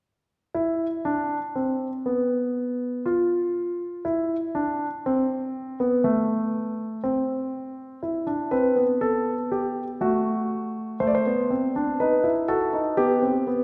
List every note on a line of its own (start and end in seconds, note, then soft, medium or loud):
0.55 0.86 E4 medium
1.05 1.36 D4 medium
1.56 1.87 C4 medium
2.06 3.02 B3 medium
3.06 4.02 F4 medium
4.05 4.36 E4 medium
4.55 4.86 D4 medium
5.06 5.78 C4 medium
5.80 6.04 B3 medium
6.04 7.00 A3 medium
7.04 7.99 C4 medium
8.03 8.27 E4 soft
8.27 8.51 D4 medium
8.51 8.76 C4 medium
8.51 8.82 B4 medium
8.76 9.97 B3 soft
9.01 9.32 A4 medium
9.52 9.83 G4 medium
10.01 10.98 A3 medium
10.01 10.98 F#4 medium
11.00 11.24 A3 medium
11.00 11.07 C5 medium
11.07 11.14 D5 medium
11.15 11.97 C5 medium
11.26 11.50 B3 soft
11.50 11.74 C4 medium
11.76 11.99 D4 medium
12.00 12.24 D#4 medium
12.00 12.30 B4 medium
12.24 12.48 E4 medium
12.48 12.72 F#4 medium
12.48 12.79 A4 medium
12.73 12.97 D#4 medium
12.97 13.21 B3 medium
12.97 13.64 G4 medium
13.22 13.46 C4 medium
13.47 13.64 B3 medium